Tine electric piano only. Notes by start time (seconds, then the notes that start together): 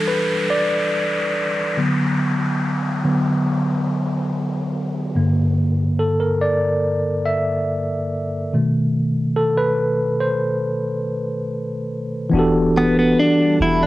Already playing: E3 G3 D4 A4
0.08 B4
0.50 D5
1.77 D3 F#3 B3
3.04 D3 F#3 B3
5.15 G2 D3 A#3
5.99 A4
6.20 A#4
6.41 D5
7.26 E5
8.53 B2 D#3 A3
9.36 A4
9.58 B4
10.21 C5
12.29 E3 B3 D4
12.35 F#4 G4 A4